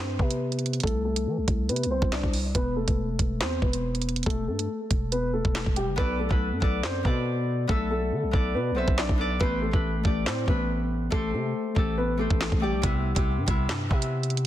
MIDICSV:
0, 0, Header, 1, 5, 480
1, 0, Start_track
1, 0, Tempo, 428571
1, 935, Time_signature, 4, 2, 24, 8
1, 16204, End_track
2, 0, Start_track
2, 0, Title_t, "Harp"
2, 0, Program_c, 0, 46
2, 6673, Note_on_c, 0, 59, 103
2, 6691, Note_on_c, 0, 69, 96
2, 6709, Note_on_c, 0, 74, 106
2, 6974, Note_off_c, 0, 59, 0
2, 6983, Note_off_c, 0, 69, 0
2, 6992, Note_off_c, 0, 74, 0
2, 7043, Note_on_c, 0, 59, 72
2, 7061, Note_on_c, 0, 69, 64
2, 7079, Note_on_c, 0, 71, 77
2, 7337, Note_off_c, 0, 59, 0
2, 7346, Note_off_c, 0, 69, 0
2, 7355, Note_off_c, 0, 71, 0
2, 7394, Note_on_c, 0, 59, 74
2, 7412, Note_on_c, 0, 69, 72
2, 7429, Note_on_c, 0, 74, 85
2, 7793, Note_off_c, 0, 59, 0
2, 7802, Note_off_c, 0, 69, 0
2, 7811, Note_off_c, 0, 74, 0
2, 7873, Note_on_c, 0, 59, 73
2, 7891, Note_on_c, 0, 69, 69
2, 7909, Note_on_c, 0, 74, 86
2, 8591, Note_off_c, 0, 59, 0
2, 8596, Note_on_c, 0, 59, 94
2, 8609, Note_off_c, 0, 69, 0
2, 8614, Note_on_c, 0, 69, 89
2, 8632, Note_on_c, 0, 76, 106
2, 9306, Note_off_c, 0, 59, 0
2, 9310, Note_on_c, 0, 59, 79
2, 9324, Note_off_c, 0, 69, 0
2, 9328, Note_on_c, 0, 69, 65
2, 9342, Note_off_c, 0, 74, 0
2, 9346, Note_on_c, 0, 74, 82
2, 9711, Note_off_c, 0, 59, 0
2, 9720, Note_off_c, 0, 69, 0
2, 9729, Note_off_c, 0, 74, 0
2, 9796, Note_on_c, 0, 59, 70
2, 9814, Note_on_c, 0, 69, 62
2, 9827, Note_off_c, 0, 76, 0
2, 9832, Note_on_c, 0, 76, 74
2, 10194, Note_off_c, 0, 59, 0
2, 10203, Note_off_c, 0, 69, 0
2, 10212, Note_off_c, 0, 76, 0
2, 10277, Note_on_c, 0, 59, 78
2, 10294, Note_on_c, 0, 69, 74
2, 10313, Note_on_c, 0, 74, 86
2, 10480, Note_off_c, 0, 59, 0
2, 10489, Note_off_c, 0, 69, 0
2, 10498, Note_off_c, 0, 74, 0
2, 10522, Note_on_c, 0, 57, 97
2, 10540, Note_on_c, 0, 67, 86
2, 10558, Note_on_c, 0, 72, 104
2, 10818, Note_off_c, 0, 57, 0
2, 10827, Note_off_c, 0, 67, 0
2, 10836, Note_off_c, 0, 72, 0
2, 10878, Note_on_c, 0, 57, 64
2, 10896, Note_on_c, 0, 67, 64
2, 10914, Note_on_c, 0, 71, 76
2, 11174, Note_off_c, 0, 57, 0
2, 11183, Note_off_c, 0, 67, 0
2, 11193, Note_off_c, 0, 71, 0
2, 11237, Note_on_c, 0, 57, 70
2, 11255, Note_on_c, 0, 67, 66
2, 11273, Note_on_c, 0, 74, 84
2, 11635, Note_off_c, 0, 57, 0
2, 11644, Note_off_c, 0, 67, 0
2, 11652, Note_off_c, 0, 74, 0
2, 11713, Note_on_c, 0, 57, 73
2, 11731, Note_on_c, 0, 67, 70
2, 11749, Note_on_c, 0, 71, 80
2, 12432, Note_off_c, 0, 57, 0
2, 12437, Note_on_c, 0, 57, 90
2, 12450, Note_off_c, 0, 67, 0
2, 12455, Note_on_c, 0, 67, 99
2, 12473, Note_on_c, 0, 72, 114
2, 12540, Note_off_c, 0, 71, 0
2, 13153, Note_off_c, 0, 57, 0
2, 13157, Note_on_c, 0, 57, 83
2, 13171, Note_off_c, 0, 67, 0
2, 13175, Note_on_c, 0, 67, 74
2, 13194, Note_on_c, 0, 69, 81
2, 13555, Note_off_c, 0, 57, 0
2, 13564, Note_off_c, 0, 67, 0
2, 13573, Note_off_c, 0, 69, 0
2, 13635, Note_on_c, 0, 57, 68
2, 13653, Note_on_c, 0, 67, 64
2, 13666, Note_off_c, 0, 72, 0
2, 13671, Note_on_c, 0, 72, 71
2, 14034, Note_off_c, 0, 57, 0
2, 14042, Note_off_c, 0, 67, 0
2, 14051, Note_off_c, 0, 72, 0
2, 14111, Note_on_c, 0, 57, 78
2, 14129, Note_on_c, 0, 67, 69
2, 14147, Note_on_c, 0, 74, 81
2, 14317, Note_off_c, 0, 57, 0
2, 14326, Note_off_c, 0, 67, 0
2, 14335, Note_off_c, 0, 74, 0
2, 14355, Note_on_c, 0, 48, 99
2, 14374, Note_on_c, 0, 59, 96
2, 14392, Note_on_c, 0, 64, 103
2, 14664, Note_off_c, 0, 59, 0
2, 14673, Note_off_c, 0, 64, 0
2, 14712, Note_off_c, 0, 48, 0
2, 14726, Note_on_c, 0, 48, 79
2, 14744, Note_on_c, 0, 59, 68
2, 14762, Note_on_c, 0, 67, 78
2, 15027, Note_off_c, 0, 59, 0
2, 15036, Note_off_c, 0, 67, 0
2, 15066, Note_off_c, 0, 48, 0
2, 15079, Note_on_c, 0, 48, 75
2, 15097, Note_on_c, 0, 59, 68
2, 15115, Note_on_c, 0, 64, 93
2, 15484, Note_off_c, 0, 59, 0
2, 15494, Note_off_c, 0, 64, 0
2, 15543, Note_off_c, 0, 48, 0
2, 15556, Note_on_c, 0, 48, 72
2, 15575, Note_on_c, 0, 59, 69
2, 15593, Note_on_c, 0, 64, 78
2, 16204, Note_off_c, 0, 48, 0
2, 16204, Note_off_c, 0, 59, 0
2, 16204, Note_off_c, 0, 64, 0
2, 16204, End_track
3, 0, Start_track
3, 0, Title_t, "Grand piano"
3, 0, Program_c, 1, 0
3, 0, Note_on_c, 1, 60, 70
3, 0, Note_on_c, 1, 72, 86
3, 171, Note_off_c, 1, 72, 0
3, 176, Note_off_c, 1, 60, 0
3, 214, Note_on_c, 1, 71, 75
3, 223, Note_on_c, 1, 59, 59
3, 891, Note_off_c, 1, 71, 0
3, 896, Note_off_c, 1, 59, 0
3, 934, Note_on_c, 1, 69, 100
3, 943, Note_on_c, 1, 57, 80
3, 1129, Note_off_c, 1, 69, 0
3, 1134, Note_off_c, 1, 57, 0
3, 1174, Note_on_c, 1, 69, 76
3, 1182, Note_on_c, 1, 57, 63
3, 1851, Note_off_c, 1, 69, 0
3, 1856, Note_off_c, 1, 57, 0
3, 1893, Note_on_c, 1, 71, 78
3, 1902, Note_on_c, 1, 59, 60
3, 2088, Note_off_c, 1, 71, 0
3, 2094, Note_off_c, 1, 59, 0
3, 2136, Note_on_c, 1, 72, 81
3, 2145, Note_on_c, 1, 60, 65
3, 2330, Note_off_c, 1, 72, 0
3, 2335, Note_off_c, 1, 60, 0
3, 2373, Note_on_c, 1, 74, 85
3, 2382, Note_on_c, 1, 62, 68
3, 2568, Note_off_c, 1, 74, 0
3, 2574, Note_off_c, 1, 62, 0
3, 2855, Note_on_c, 1, 71, 102
3, 2864, Note_on_c, 1, 59, 81
3, 3049, Note_off_c, 1, 71, 0
3, 3055, Note_off_c, 1, 59, 0
3, 3095, Note_on_c, 1, 69, 79
3, 3104, Note_on_c, 1, 57, 62
3, 3772, Note_off_c, 1, 69, 0
3, 3776, Note_off_c, 1, 57, 0
3, 3813, Note_on_c, 1, 72, 93
3, 3822, Note_on_c, 1, 60, 70
3, 4008, Note_off_c, 1, 72, 0
3, 4014, Note_off_c, 1, 60, 0
3, 4055, Note_on_c, 1, 71, 68
3, 4064, Note_on_c, 1, 59, 59
3, 4732, Note_off_c, 1, 71, 0
3, 4736, Note_off_c, 1, 59, 0
3, 4773, Note_on_c, 1, 69, 98
3, 4782, Note_on_c, 1, 57, 95
3, 4968, Note_off_c, 1, 69, 0
3, 4974, Note_off_c, 1, 57, 0
3, 5016, Note_on_c, 1, 69, 75
3, 5024, Note_on_c, 1, 57, 63
3, 5692, Note_off_c, 1, 69, 0
3, 5696, Note_off_c, 1, 57, 0
3, 5733, Note_on_c, 1, 71, 88
3, 5742, Note_on_c, 1, 59, 63
3, 5928, Note_off_c, 1, 71, 0
3, 5934, Note_off_c, 1, 59, 0
3, 5973, Note_on_c, 1, 69, 73
3, 5983, Note_on_c, 1, 57, 53
3, 6425, Note_off_c, 1, 69, 0
3, 6430, Note_off_c, 1, 57, 0
3, 6457, Note_on_c, 1, 67, 82
3, 6466, Note_on_c, 1, 55, 64
3, 6650, Note_off_c, 1, 67, 0
3, 6656, Note_off_c, 1, 55, 0
3, 6695, Note_on_c, 1, 71, 114
3, 6705, Note_on_c, 1, 59, 88
3, 6889, Note_off_c, 1, 71, 0
3, 6895, Note_off_c, 1, 59, 0
3, 6935, Note_on_c, 1, 69, 79
3, 6943, Note_on_c, 1, 57, 59
3, 7612, Note_off_c, 1, 69, 0
3, 7616, Note_off_c, 1, 57, 0
3, 7655, Note_on_c, 1, 72, 93
3, 7663, Note_on_c, 1, 60, 62
3, 7849, Note_off_c, 1, 72, 0
3, 7854, Note_off_c, 1, 60, 0
3, 7893, Note_on_c, 1, 71, 65
3, 7902, Note_on_c, 1, 59, 61
3, 8571, Note_off_c, 1, 71, 0
3, 8575, Note_off_c, 1, 59, 0
3, 8612, Note_on_c, 1, 69, 95
3, 8621, Note_on_c, 1, 57, 83
3, 8808, Note_off_c, 1, 69, 0
3, 8813, Note_off_c, 1, 57, 0
3, 8855, Note_on_c, 1, 69, 83
3, 8864, Note_on_c, 1, 57, 62
3, 9531, Note_off_c, 1, 69, 0
3, 9536, Note_off_c, 1, 57, 0
3, 9573, Note_on_c, 1, 71, 78
3, 9582, Note_on_c, 1, 59, 65
3, 9768, Note_off_c, 1, 71, 0
3, 9774, Note_off_c, 1, 59, 0
3, 9814, Note_on_c, 1, 72, 80
3, 9823, Note_on_c, 1, 60, 56
3, 10009, Note_off_c, 1, 72, 0
3, 10014, Note_off_c, 1, 60, 0
3, 10054, Note_on_c, 1, 74, 87
3, 10062, Note_on_c, 1, 62, 66
3, 10249, Note_off_c, 1, 74, 0
3, 10254, Note_off_c, 1, 62, 0
3, 10534, Note_on_c, 1, 71, 108
3, 10543, Note_on_c, 1, 59, 83
3, 10729, Note_off_c, 1, 71, 0
3, 10735, Note_off_c, 1, 59, 0
3, 10775, Note_on_c, 1, 69, 76
3, 10784, Note_on_c, 1, 57, 66
3, 11452, Note_off_c, 1, 69, 0
3, 11457, Note_off_c, 1, 57, 0
3, 11495, Note_on_c, 1, 72, 83
3, 11504, Note_on_c, 1, 60, 70
3, 11690, Note_off_c, 1, 72, 0
3, 11695, Note_off_c, 1, 60, 0
3, 11734, Note_on_c, 1, 71, 67
3, 11743, Note_on_c, 1, 59, 62
3, 12411, Note_off_c, 1, 71, 0
3, 12416, Note_off_c, 1, 59, 0
3, 12454, Note_on_c, 1, 69, 106
3, 12463, Note_on_c, 1, 57, 89
3, 12649, Note_off_c, 1, 69, 0
3, 12654, Note_off_c, 1, 57, 0
3, 12696, Note_on_c, 1, 69, 76
3, 12705, Note_on_c, 1, 57, 60
3, 13372, Note_off_c, 1, 69, 0
3, 13377, Note_off_c, 1, 57, 0
3, 13414, Note_on_c, 1, 71, 85
3, 13423, Note_on_c, 1, 59, 73
3, 13609, Note_off_c, 1, 71, 0
3, 13615, Note_off_c, 1, 59, 0
3, 13654, Note_on_c, 1, 69, 72
3, 13663, Note_on_c, 1, 57, 59
3, 14106, Note_off_c, 1, 69, 0
3, 14110, Note_off_c, 1, 57, 0
3, 14135, Note_on_c, 1, 67, 87
3, 14144, Note_on_c, 1, 55, 64
3, 14330, Note_off_c, 1, 67, 0
3, 14335, Note_off_c, 1, 55, 0
3, 16204, End_track
4, 0, Start_track
4, 0, Title_t, "808-style bass"
4, 0, Program_c, 2, 38
4, 0, Note_on_c, 2, 43, 105
4, 203, Note_off_c, 2, 43, 0
4, 215, Note_on_c, 2, 48, 102
4, 906, Note_off_c, 2, 48, 0
4, 935, Note_on_c, 2, 36, 105
4, 1415, Note_on_c, 2, 52, 104
4, 1432, Note_off_c, 2, 36, 0
4, 1542, Note_on_c, 2, 36, 103
4, 1559, Note_off_c, 2, 52, 0
4, 1649, Note_off_c, 2, 36, 0
4, 1655, Note_on_c, 2, 36, 108
4, 1894, Note_on_c, 2, 48, 99
4, 1911, Note_off_c, 2, 36, 0
4, 2078, Note_on_c, 2, 36, 99
4, 2095, Note_off_c, 2, 48, 0
4, 2253, Note_off_c, 2, 36, 0
4, 2262, Note_on_c, 2, 36, 105
4, 2492, Note_off_c, 2, 36, 0
4, 2502, Note_on_c, 2, 36, 106
4, 2841, Note_off_c, 2, 36, 0
4, 2855, Note_on_c, 2, 28, 107
4, 3207, Note_off_c, 2, 28, 0
4, 3222, Note_on_c, 2, 28, 107
4, 3561, Note_off_c, 2, 28, 0
4, 3575, Note_on_c, 2, 28, 106
4, 3815, Note_on_c, 2, 40, 101
4, 3831, Note_off_c, 2, 28, 0
4, 4043, Note_off_c, 2, 40, 0
4, 4055, Note_on_c, 2, 28, 107
4, 4746, Note_off_c, 2, 28, 0
4, 4775, Note_on_c, 2, 28, 106
4, 5015, Note_on_c, 2, 43, 98
4, 5032, Note_off_c, 2, 28, 0
4, 5243, Note_off_c, 2, 43, 0
4, 5495, Note_on_c, 2, 28, 100
4, 6078, Note_off_c, 2, 28, 0
4, 6102, Note_on_c, 2, 28, 99
4, 6332, Note_off_c, 2, 28, 0
4, 6343, Note_on_c, 2, 28, 107
4, 6582, Note_on_c, 2, 30, 98
4, 6599, Note_off_c, 2, 28, 0
4, 6689, Note_off_c, 2, 30, 0
4, 6695, Note_on_c, 2, 35, 112
4, 7047, Note_off_c, 2, 35, 0
4, 7062, Note_on_c, 2, 35, 109
4, 7302, Note_on_c, 2, 42, 101
4, 7319, Note_off_c, 2, 35, 0
4, 7409, Note_off_c, 2, 42, 0
4, 7415, Note_on_c, 2, 35, 105
4, 7654, Note_on_c, 2, 42, 103
4, 7671, Note_off_c, 2, 35, 0
4, 7882, Note_off_c, 2, 42, 0
4, 7895, Note_on_c, 2, 47, 102
4, 8586, Note_off_c, 2, 47, 0
4, 8615, Note_on_c, 2, 35, 103
4, 9094, Note_on_c, 2, 50, 101
4, 9111, Note_off_c, 2, 35, 0
4, 9221, Note_on_c, 2, 35, 104
4, 9238, Note_off_c, 2, 50, 0
4, 9329, Note_off_c, 2, 35, 0
4, 9335, Note_on_c, 2, 35, 102
4, 9574, Note_on_c, 2, 47, 99
4, 9591, Note_off_c, 2, 35, 0
4, 9758, Note_on_c, 2, 35, 97
4, 9774, Note_off_c, 2, 47, 0
4, 9933, Note_off_c, 2, 35, 0
4, 9942, Note_on_c, 2, 35, 101
4, 10172, Note_off_c, 2, 35, 0
4, 10182, Note_on_c, 2, 35, 109
4, 10521, Note_off_c, 2, 35, 0
4, 10535, Note_on_c, 2, 33, 109
4, 10887, Note_off_c, 2, 33, 0
4, 10903, Note_on_c, 2, 33, 107
4, 11241, Note_off_c, 2, 33, 0
4, 11255, Note_on_c, 2, 33, 107
4, 11495, Note_on_c, 2, 45, 105
4, 11512, Note_off_c, 2, 33, 0
4, 11723, Note_off_c, 2, 45, 0
4, 11735, Note_on_c, 2, 33, 108
4, 12426, Note_off_c, 2, 33, 0
4, 12455, Note_on_c, 2, 33, 105
4, 12694, Note_on_c, 2, 48, 96
4, 12711, Note_off_c, 2, 33, 0
4, 12923, Note_off_c, 2, 48, 0
4, 13174, Note_on_c, 2, 33, 102
4, 13758, Note_off_c, 2, 33, 0
4, 13782, Note_on_c, 2, 33, 104
4, 14012, Note_off_c, 2, 33, 0
4, 14022, Note_on_c, 2, 33, 110
4, 14261, Note_on_c, 2, 35, 98
4, 14278, Note_off_c, 2, 33, 0
4, 14369, Note_off_c, 2, 35, 0
4, 14375, Note_on_c, 2, 36, 109
4, 14727, Note_off_c, 2, 36, 0
4, 14742, Note_on_c, 2, 36, 108
4, 14982, Note_on_c, 2, 43, 106
4, 14998, Note_off_c, 2, 36, 0
4, 15089, Note_off_c, 2, 43, 0
4, 15095, Note_on_c, 2, 36, 105
4, 15334, Note_on_c, 2, 43, 98
4, 15351, Note_off_c, 2, 36, 0
4, 15563, Note_off_c, 2, 43, 0
4, 15575, Note_on_c, 2, 48, 105
4, 16204, Note_off_c, 2, 48, 0
4, 16204, End_track
5, 0, Start_track
5, 0, Title_t, "Drums"
5, 215, Note_on_c, 9, 36, 98
5, 327, Note_off_c, 9, 36, 0
5, 342, Note_on_c, 9, 42, 77
5, 454, Note_off_c, 9, 42, 0
5, 582, Note_on_c, 9, 42, 44
5, 657, Note_off_c, 9, 42, 0
5, 657, Note_on_c, 9, 42, 51
5, 737, Note_off_c, 9, 42, 0
5, 737, Note_on_c, 9, 42, 58
5, 822, Note_off_c, 9, 42, 0
5, 822, Note_on_c, 9, 42, 62
5, 897, Note_off_c, 9, 42, 0
5, 897, Note_on_c, 9, 42, 68
5, 935, Note_on_c, 9, 36, 117
5, 977, Note_off_c, 9, 42, 0
5, 977, Note_on_c, 9, 42, 74
5, 1047, Note_off_c, 9, 36, 0
5, 1089, Note_off_c, 9, 42, 0
5, 1302, Note_on_c, 9, 42, 76
5, 1414, Note_off_c, 9, 42, 0
5, 1655, Note_on_c, 9, 36, 91
5, 1655, Note_on_c, 9, 42, 76
5, 1767, Note_off_c, 9, 36, 0
5, 1767, Note_off_c, 9, 42, 0
5, 1895, Note_on_c, 9, 42, 59
5, 1975, Note_off_c, 9, 42, 0
5, 1975, Note_on_c, 9, 42, 59
5, 2055, Note_off_c, 9, 42, 0
5, 2055, Note_on_c, 9, 42, 61
5, 2167, Note_off_c, 9, 42, 0
5, 2262, Note_on_c, 9, 36, 99
5, 2374, Note_off_c, 9, 36, 0
5, 2375, Note_on_c, 9, 38, 112
5, 2375, Note_on_c, 9, 42, 73
5, 2384, Note_on_c, 9, 39, 88
5, 2487, Note_off_c, 9, 38, 0
5, 2487, Note_off_c, 9, 42, 0
5, 2496, Note_off_c, 9, 39, 0
5, 2502, Note_on_c, 9, 36, 92
5, 2614, Note_off_c, 9, 36, 0
5, 2614, Note_on_c, 9, 46, 57
5, 2726, Note_off_c, 9, 46, 0
5, 2855, Note_on_c, 9, 36, 114
5, 2855, Note_on_c, 9, 42, 78
5, 2967, Note_off_c, 9, 36, 0
5, 2967, Note_off_c, 9, 42, 0
5, 3222, Note_on_c, 9, 36, 95
5, 3222, Note_on_c, 9, 42, 75
5, 3334, Note_off_c, 9, 36, 0
5, 3334, Note_off_c, 9, 42, 0
5, 3575, Note_on_c, 9, 36, 95
5, 3575, Note_on_c, 9, 42, 75
5, 3687, Note_off_c, 9, 36, 0
5, 3687, Note_off_c, 9, 42, 0
5, 3815, Note_on_c, 9, 38, 113
5, 3815, Note_on_c, 9, 42, 75
5, 3824, Note_on_c, 9, 39, 89
5, 3927, Note_off_c, 9, 38, 0
5, 3927, Note_off_c, 9, 42, 0
5, 3936, Note_off_c, 9, 39, 0
5, 4055, Note_on_c, 9, 36, 94
5, 4167, Note_off_c, 9, 36, 0
5, 4182, Note_on_c, 9, 42, 79
5, 4294, Note_off_c, 9, 42, 0
5, 4422, Note_on_c, 9, 42, 46
5, 4497, Note_off_c, 9, 42, 0
5, 4497, Note_on_c, 9, 42, 53
5, 4577, Note_off_c, 9, 42, 0
5, 4577, Note_on_c, 9, 42, 60
5, 4662, Note_off_c, 9, 42, 0
5, 4662, Note_on_c, 9, 42, 61
5, 4737, Note_off_c, 9, 42, 0
5, 4737, Note_on_c, 9, 42, 66
5, 4775, Note_on_c, 9, 36, 114
5, 4817, Note_off_c, 9, 42, 0
5, 4817, Note_on_c, 9, 42, 73
5, 4887, Note_off_c, 9, 36, 0
5, 4929, Note_off_c, 9, 42, 0
5, 5142, Note_on_c, 9, 42, 73
5, 5254, Note_off_c, 9, 42, 0
5, 5495, Note_on_c, 9, 36, 94
5, 5495, Note_on_c, 9, 42, 76
5, 5607, Note_off_c, 9, 36, 0
5, 5607, Note_off_c, 9, 42, 0
5, 5735, Note_on_c, 9, 42, 70
5, 5847, Note_off_c, 9, 42, 0
5, 6102, Note_on_c, 9, 36, 96
5, 6214, Note_off_c, 9, 36, 0
5, 6215, Note_on_c, 9, 38, 111
5, 6215, Note_on_c, 9, 42, 75
5, 6224, Note_on_c, 9, 39, 88
5, 6327, Note_off_c, 9, 38, 0
5, 6327, Note_off_c, 9, 42, 0
5, 6336, Note_off_c, 9, 39, 0
5, 6342, Note_on_c, 9, 36, 96
5, 6454, Note_off_c, 9, 36, 0
5, 6455, Note_on_c, 9, 42, 77
5, 6567, Note_off_c, 9, 42, 0
5, 6695, Note_on_c, 9, 36, 114
5, 6807, Note_off_c, 9, 36, 0
5, 7062, Note_on_c, 9, 36, 93
5, 7174, Note_off_c, 9, 36, 0
5, 7415, Note_on_c, 9, 36, 93
5, 7527, Note_off_c, 9, 36, 0
5, 7655, Note_on_c, 9, 38, 110
5, 7663, Note_on_c, 9, 39, 91
5, 7767, Note_off_c, 9, 38, 0
5, 7775, Note_off_c, 9, 39, 0
5, 7895, Note_on_c, 9, 36, 97
5, 8007, Note_off_c, 9, 36, 0
5, 8614, Note_on_c, 9, 36, 115
5, 8726, Note_off_c, 9, 36, 0
5, 9335, Note_on_c, 9, 36, 96
5, 9447, Note_off_c, 9, 36, 0
5, 9942, Note_on_c, 9, 36, 102
5, 10054, Note_off_c, 9, 36, 0
5, 10056, Note_on_c, 9, 38, 110
5, 10065, Note_on_c, 9, 39, 91
5, 10168, Note_off_c, 9, 38, 0
5, 10177, Note_off_c, 9, 39, 0
5, 10182, Note_on_c, 9, 36, 95
5, 10294, Note_off_c, 9, 36, 0
5, 10535, Note_on_c, 9, 36, 112
5, 10647, Note_off_c, 9, 36, 0
5, 10903, Note_on_c, 9, 36, 92
5, 11015, Note_off_c, 9, 36, 0
5, 11255, Note_on_c, 9, 36, 93
5, 11367, Note_off_c, 9, 36, 0
5, 11495, Note_on_c, 9, 38, 113
5, 11504, Note_on_c, 9, 39, 89
5, 11607, Note_off_c, 9, 38, 0
5, 11616, Note_off_c, 9, 39, 0
5, 11735, Note_on_c, 9, 36, 97
5, 11847, Note_off_c, 9, 36, 0
5, 12455, Note_on_c, 9, 36, 116
5, 12567, Note_off_c, 9, 36, 0
5, 13175, Note_on_c, 9, 36, 92
5, 13287, Note_off_c, 9, 36, 0
5, 13782, Note_on_c, 9, 36, 99
5, 13894, Note_off_c, 9, 36, 0
5, 13895, Note_on_c, 9, 38, 110
5, 13904, Note_on_c, 9, 39, 91
5, 14007, Note_off_c, 9, 38, 0
5, 14016, Note_off_c, 9, 39, 0
5, 14022, Note_on_c, 9, 36, 94
5, 14134, Note_off_c, 9, 36, 0
5, 14374, Note_on_c, 9, 42, 77
5, 14375, Note_on_c, 9, 36, 115
5, 14486, Note_off_c, 9, 42, 0
5, 14487, Note_off_c, 9, 36, 0
5, 14742, Note_on_c, 9, 36, 92
5, 14742, Note_on_c, 9, 42, 75
5, 14854, Note_off_c, 9, 36, 0
5, 14854, Note_off_c, 9, 42, 0
5, 15094, Note_on_c, 9, 42, 73
5, 15095, Note_on_c, 9, 36, 92
5, 15206, Note_off_c, 9, 42, 0
5, 15207, Note_off_c, 9, 36, 0
5, 15334, Note_on_c, 9, 38, 112
5, 15334, Note_on_c, 9, 42, 76
5, 15343, Note_on_c, 9, 39, 89
5, 15446, Note_off_c, 9, 38, 0
5, 15446, Note_off_c, 9, 42, 0
5, 15455, Note_off_c, 9, 39, 0
5, 15575, Note_on_c, 9, 36, 96
5, 15687, Note_off_c, 9, 36, 0
5, 15702, Note_on_c, 9, 42, 78
5, 15814, Note_off_c, 9, 42, 0
5, 15942, Note_on_c, 9, 42, 46
5, 16018, Note_off_c, 9, 42, 0
5, 16018, Note_on_c, 9, 42, 53
5, 16097, Note_off_c, 9, 42, 0
5, 16097, Note_on_c, 9, 42, 58
5, 16204, Note_off_c, 9, 42, 0
5, 16204, End_track
0, 0, End_of_file